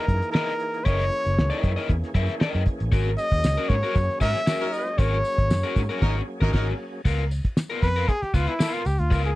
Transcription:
Already playing: tonewheel organ E3 A#3 D#4 G#4, trumpet A#4
0.08 fingered electric bass F#2, kick, closed hi-hat
0.22 closed hi-hat
0.32 overdriven electric guitar E4 A#4 D#5, trumpet A#4, snare
0.49 closed hi-hat
0.60 closed hi-hat
0.74 closed hi-hat
0.85 fingered electric bass F#1, tonewheel organ C#4, overdriven electric guitar E4 A#4 D#5, trumpet C#5, kick, closed hi-hat
1.00 closed hi-hat
1.12 closed hi-hat
1.26 fingered electric bass F#1, closed hi-hat
1.38 fingered electric bass C#2, snare
1.50 overdriven electric guitar E4 A#4 D#5, closed hi-hat
1.63 fingered electric bass F#2, kick, closed hi-hat
1.76 overdriven electric guitar E4 A#4 D#5, closed hi-hat
1.90 fingered electric bass E2, kick, closed hi-hat
2.04 snare, closed hi-hat
2.14 fingered electric bass F#2, overdriven electric guitar E4 A#4 E5, kick, closed hi-hat
2.29 snare, closed hi-hat
2.40 overdriven electric guitar E4 A#4 D#5, snare
2.55 fingered electric bass F#2, closed hi-hat
2.66 kick, closed hi-hat
2.80 fingered electric bass A1, closed hi-hat
2.92 fingered electric bass G#1, tonewheel organ F#3, overdriven electric guitar C#4 F#4 A#4, kick, closed hi-hat, tambourine
3.06 closed hi-hat
3.18 trumpet D#5, closed hi-hat, tambourine
3.32 fingered electric bass D#2, kick, closed hi-hat
3.44 fingered electric bass C#2, snare, tambourine
3.57 overdriven electric guitar C#4 F#4 A#4, closed hi-hat
3.69 fingered electric bass G#2, trumpet C#5, kick, closed hi-hat
3.83 overdriven electric guitar C#4 F#4 A#4, closed hi-hat
3.95 fingered electric bass F#2, kick, closed hi-hat, tambourine
4.10 snare, closed hi-hat
4.20 fingered electric bass G#2, horn section F#3 D#4 A#4, overdriven electric guitar C#4 F#4 C#5, trumpet E5, kick, closed hi-hat, tambourine
4.35 snare, closed hi-hat
4.47 overdriven electric guitar C#4 F#4 A#4, snare, tambourine
4.61 horn section F#3 D#4 A#4, closed hi-hat
4.72 trumpet D#5, closed hi-hat, tambourine
4.87 closed hi-hat
4.98 fingered electric bass G#1, overdriven electric guitar C#4 F#4 A#4, trumpet C#5, kick, closed hi-hat, tambourine
5.13 closed hi-hat
5.25 closed hi-hat, tambourine
5.38 fingered electric bass G#1, kick, closed hi-hat
5.50 fingered electric bass F#2, snare, tambourine
5.63 overdriven electric guitar C#4 F#4 A#4, closed hi-hat
5.76 fingered electric bass G#2, kick, closed hi-hat, tambourine
5.89 overdriven electric guitar C#4 F#4 A#4, closed hi-hat
6.01 fingered electric bass G#1, horn section F#3 D#4 A#4, overdriven electric guitar C#4 F#4 A#4, kick, snare, crash
6.41 fingered electric bass G#1, horn section F#3 D#4 A#4, overdriven electric guitar C#4 F#4 A#4, kick, snare
6.53 fingered electric bass G#1, horn section F#3 D#4 A#4, overdriven electric guitar C#4 F#4 A#4, kick, snare, crash
7.05 fingered electric bass C#2, overdriven electric guitar B3 F4 A#4, kick, crash, tambourine
7.19 closed hi-hat
7.31 closed hi-hat, tambourine
7.45 kick, closed hi-hat
7.57 snare, tambourine
7.70 overdriven electric guitar B3 F4 A#4, closed hi-hat
7.82 fingered electric bass F2, trumpet B4, kick, closed hi-hat, tambourine
7.96 overdriven electric guitar B3 F4 A#4, closed hi-hat
8.08 trumpet G#4, kick, closed hi-hat
8.22 trumpet G4, muted fingered electric bass stroke, snare, closed hi-hat
8.34 fingered electric bass C#2, overdriven electric guitar B3 F4 B4, trumpet F4, kick, closed hi-hat, tambourine
8.47 trumpet E4, closed hi-hat
8.59 overdriven electric guitar B3 F4 A#4, snare, tambourine
8.74 trumpet F4, closed hi-hat
8.85 fingered electric bass C#2, trumpet G4, closed hi-hat, tambourine
8.99 fingered electric bass D2, trumpet F4, closed hi-hat
9.10 fingered electric bass C#2, overdriven electric guitar B3 F4 A#4, kick, closed hi-hat, tambourine
9.25 trumpet G#4, closed hi-hat

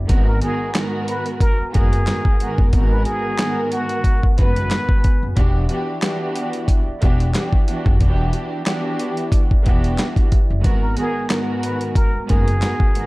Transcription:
0.07 upright bass G#1, string section G#2 D#3 B3 F#4 A#4, analog synth pad B3 F#4 G#5, kick, closed hi-hat
0.28 muted trumpet A#4
0.41 string section G#2 D#3 B3 F#4 A#4, muted trumpet G#4, closed hi-hat
0.75 string section G#2 D#3 B3 F#4 A#4, snare, clap, closed hi-hat
1.08 muted trumpet B4, closed hi-hat
1.26 closed hi-hat
1.41 muted trumpet A#4, kick, closed hi-hat
1.60 muted upright bass stroke
1.72 upright bass F#1, string section G#2 D#3 B3 F#4 A#4, muted trumpet G#4, kick, closed hi-hat
1.93 closed hi-hat
2.06 string section G#2 D#3 B3 F#4 A#4, snare, clap, closed hi-hat
2.25 kick
2.40 string section G#2 D#3 B3 F#4 A#4, closed hi-hat
2.58 upright bass F#1, kick
2.73 upright bass G#1, string section G#2 D#3 B3 F#4 A#4, kick, closed hi-hat
2.91 muted trumpet B4
3.05 muted trumpet G#4, closed hi-hat
3.38 string section G#2 D#3 B3 F#4 A#4, snare, clap, closed hi-hat
3.72 muted trumpet F#4, closed hi-hat
3.89 closed hi-hat
4.04 kick, closed hi-hat
4.23 muted upright bass stroke, kick
4.38 upright bass F#1, string section G#2 D#3 B3 F#4 B4, muted trumpet B4, kick, closed hi-hat
4.56 closed hi-hat
4.71 snare, clap, closed hi-hat
4.89 kick
5.04 kick, closed hi-hat
5.23 upright bass F#1
5.36 upright bass E1, string section E3 B3 D4 F#4 G4, analog synth pad E4 D5 E5, kick, closed hi-hat
5.68 string section E3 B3 D4 F#4 G4, closed hi-hat
6.02 string section E3 B3 D4 F#4 G4, snare, clap, closed hi-hat
6.36 closed hi-hat
6.53 closed hi-hat
6.68 kick, closed hi-hat
6.88 muted upright bass stroke
7.01 upright bass E1, string section E3 B3 D4 F#4 G4, kick, closed hi-hat
7.20 closed hi-hat
7.33 string section E3 B3 D4 F#4 G4, snare, clap, closed hi-hat
7.53 kick
7.68 string section E3 B3 D4 F#4 G4, closed hi-hat
7.86 upright bass F#1, kick
7.99 upright bass E1, string section E3 B3 D4 F#4 G4, kick, closed hi-hat
8.33 closed hi-hat
8.65 string section E3 B3 D4 F#4 G4, snare, clap, closed hi-hat
8.99 closed hi-hat
9.17 closed hi-hat
9.32 kick, closed hi-hat
9.51 muted upright bass stroke, kick
9.64 upright bass E1, string section E3 B3 D4 F#4 G4, kick, closed hi-hat
9.84 closed hi-hat
9.98 snare, clap, closed hi-hat
10.16 kick, closed hi-hat
10.32 kick, closed hi-hat
10.50 upright bass F#1
10.62 upright bass G#1, string section G#2 D#3 B3 F#4 A#4, analog synth pad B3 F#4 G#5, kick, closed hi-hat
10.83 muted trumpet A#4
10.96 string section G#2 D#3 B3 F#4 A#4, muted trumpet G#4, closed hi-hat
11.29 string section G#2 D#3 B3 F#4 A#4, snare, clap, closed hi-hat
11.63 muted trumpet B4, closed hi-hat
11.81 closed hi-hat
11.95 muted trumpet A#4, kick, closed hi-hat
12.15 muted upright bass stroke
12.27 upright bass F#1, string section G#2 D#3 B3 F#4 A#4, muted trumpet G#4, kick, closed hi-hat
12.48 closed hi-hat
12.61 string section G#2 D#3 B3 F#4 A#4, snare, clap, closed hi-hat
12.80 kick
12.94 string section G#2 D#3 B3 F#4 A#4, closed hi-hat

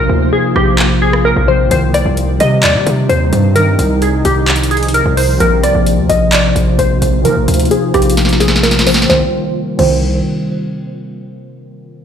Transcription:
Already playing: harp C3 F3 A#3 C4 D#4, ambient pad A#3 F4 C5, synth pluck A#4
0.09 808-style bass D2
0.33 synth pluck G#4
0.56 808-style bass A#1, synth pluck G4, cross-stick
0.79 clap
1.02 synth pluck G#4
1.13 cross-stick
1.25 synth pluck A#4
1.36 808-style bass A#1
1.47 harp C3 F3 A#3 C4, synth pluck C5
1.68 808-style bass C2, harp C3 D#3 G3, ambient pad C3 G3 D#4, synth pluck C5, closed hi-hat
1.73 harp C4
1.94 synth pluck D5, cross-stick, closed hi-hat
2.06 808-style bass C2
2.17 closed hi-hat
2.40 808-style bass C3, synth pluck D#5, closed hi-hat
2.63 808-style bass D#2, synth pluck D5, clap, closed hi-hat
2.75 808-style bass C3
2.87 808-style bass C3, closed hi-hat
3.09 808-style bass D#2, synth pluck C5, closed hi-hat
3.33 808-style bass G2, closed hi-hat
3.53 harp C3 D#3 G3, ambient pad F3, synth pluck A#4, closed hi-hat
3.59 harp D#4
3.79 808-style bass C2, closed hi-hat
4.02 synth pluck G#4, closed hi-hat
4.25 808-style bass C2, synth pluck G4, closed hi-hat
4.48 clap, closed hi-hat
4.56 closed hi-hat
4.63 closed hi-hat
4.71 synth pluck G#4, closed hi-hat
4.77 closed hi-hat
4.83 closed hi-hat
4.88 closed hi-hat
4.94 synth pluck A#4, closed hi-hat
5.06 808-style bass C2
5.17 synth pluck C5, open hi-hat
5.38 808-style bass A#1, harp C3 F3 A#3, ambient pad A#3 F4 C5, synth pluck A#4, closed hi-hat
5.43 harp C4
5.63 808-style bass C2, synth pluck D5, cross-stick, closed hi-hat
5.75 808-style bass A#1
5.86 closed hi-hat
5.98 808-style bass D2
6.09 808-style bass A#1, synth pluck D#5, closed hi-hat
6.33 synth pluck D5, clap, closed hi-hat
6.56 808-style bass A#1, closed hi-hat
6.79 808-style bass A#1, synth pluck C5, closed hi-hat
7.02 808-style bass A#1, closed hi-hat
7.22 harp C3 F3 A#3, 808-style bass F3, synth pluck A#4, closed hi-hat
7.27 harp D#4
7.36 808-style bass A#1
7.48 808-style bass D2, closed hi-hat
7.54 closed hi-hat
7.60 closed hi-hat
7.65 closed hi-hat
7.71 synth pluck G#4, closed hi-hat
7.94 808-style bass A#1, synth pluck G4, cross-stick, closed hi-hat
8.02 closed hi-hat
8.10 closed hi-hat
8.17 snare, closed hi-hat
8.25 snare, closed hi-hat
8.33 snare
8.40 synth pluck G#4, snare, closed hi-hat
8.48 snare
8.56 snare
8.63 synth pluck A#4, snare, closed hi-hat
8.71 snare, closed hi-hat
8.79 snare, closed hi-hat
8.85 harp C3 F3 A#3 C4, synth pluck C5, snare, open hi-hat
8.94 snare
9.02 snare
9.06 808-style bass C2, harp C3 D#3, synth pluck C5, snare
9.11 harp G3 C4
9.77 808-style bass C2, harp C3 D#3 G3 C4, synth pluck C5, crash

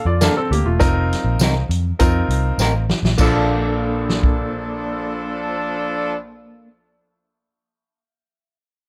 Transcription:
0.05 picked electric bass F2, grand piano F4 D5
0.21 clean electric guitar A#3 D4 A4, grand piano D4 A#4, snare, closed hi-hat, tambourine
0.37 grand piano C4 A4
0.51 picked electric bass D2, grand piano A#3 G4, closed hi-hat
0.66 picked electric bass E1, grand piano A3 F4
0.79 picked electric bass F1, grand piano C4 D#4 F4 A#4, kick, closed hi-hat, tambourine
1.13 snare, closed hi-hat
1.24 picked electric bass A#1
1.39 picked electric bass C2, clean electric guitar C4 D#4 A#4, snare, closed hi-hat, tambourine
1.69 picked electric bass F2, closed hi-hat
1.99 picked electric bass F2, grand piano C4 D#4 F4 A#4, kick, closed hi-hat, tambourine
2.29 picked electric bass C2, closed hi-hat
2.58 picked electric bass A1, clean electric guitar C4 D#4 A#4, snare, tambourine
2.90 snare
3.03 picked electric bass A#1, snare
3.18 picked electric bass A#1, grand piano A#1 A#3 D4 F4 A4, horn section F3 D4 A4, clean electric guitar A#3 D4, kick, crash, tambourine
3.23 clean electric guitar A4
4.10 snare
4.23 kick

